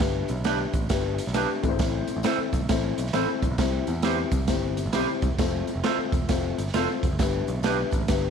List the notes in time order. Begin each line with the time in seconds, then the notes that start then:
0.00 G1 B3 D4 G4 B4, kick, snare, closed hi-hat
0.28 B1, closed hi-hat, tambourine, high conga
0.44 B3 D4 G4 B4, snare, closed hi-hat, tambourine
0.73 A1, kick, closed hi-hat, tambourine, muted conga, high conga
0.81 low conga
0.89 G1 B3 D4 G4 B4, kick, snare, closed hi-hat, tambourine
1.18 closed hi-hat, tambourine
1.27 B1, snare
1.34 B3 D4 G4 B4, snare, closed hi-hat, tambourine, muted conga, high conga
1.49 high conga
1.63 A1 C4 E4 A4 B4, kick, closed hi-hat, tambourine, muted conga, low conga
1.69 G#1 C5
1.79 A1, kick, snare, closed hi-hat, tambourine
2.07 closed hi-hat, tambourine, muted conga, high conga
2.16 A1
2.23 C4 E4 A4 C5, snare, closed hi-hat, tambourine, muted conga
2.38 muted picked electric bass stroke
2.53 B1, kick, closed hi-hat, tambourine, muted conga, high conga
2.60 low conga
2.68 A1 C4 E4 A4 C5, kick, snare, closed hi-hat, tambourine
2.98 B1, closed hi-hat, tambourine, muted conga
3.07 snare
3.13 A1 C4 E4 A4 C5, snare, closed hi-hat, tambourine, muted conga, high conga
3.28 high conga
3.42 A#1, kick, closed hi-hat, tambourine, low conga
3.51 B1
3.58 C2 C4 E4 G4 C5, kick, snare, closed hi-hat, tambourine
3.87 E2, closed hi-hat, tambourine, muted conga, high conga
4.02 C4 E4 G4 B4 C5, snare, closed hi-hat, tambourine
4.31 C2, kick, closed hi-hat, tambourine, high conga
4.39 low conga
4.48 G1 C4 E4 G4 C5, kick, snare, closed hi-hat, tambourine
4.77 closed hi-hat, tambourine, muted conga
4.86 B1
4.93 C4 E4 G4 C5, snare, closed hi-hat, tambourine, muted conga, high conga
5.08 high conga
5.22 C2, kick, closed hi-hat, tambourine, muted conga, low conga
5.30 E1
5.38 F1 C4 F4 A4 C5, kick, snare, closed hi-hat, tambourine
5.67 closed hi-hat, tambourine, muted conga, high conga
5.75 F1
5.83 C4 F4 A4 C5, snare, closed hi-hat, tambourine
5.98 muted picked electric bass stroke
6.12 E1, kick, closed hi-hat, tambourine, muted conga, high conga
6.22 low conga
6.28 F1 C4 F4 A4 C5, kick, snare, closed hi-hat, tambourine, muted conga
6.58 G1, closed hi-hat, tambourine
6.68 snare
6.74 F1 C4 F4 A4 C5, snare, closed hi-hat, tambourine, muted conga, high conga
6.91 high conga
7.03 F1, kick, closed hi-hat, tambourine, muted conga, low conga
7.11 F#1
7.19 G1 B3 D4 G4 B4, kick, snare, closed hi-hat, tambourine
7.47 B1, closed hi-hat, tambourine, high conga
7.63 B3 D4 G4 B4, snare, closed hi-hat, tambourine
7.91 A1, kick, closed hi-hat, tambourine, high conga
8.01 low conga
8.08 G1 B3 D4 G4 B4, kick, snare, closed hi-hat, tambourine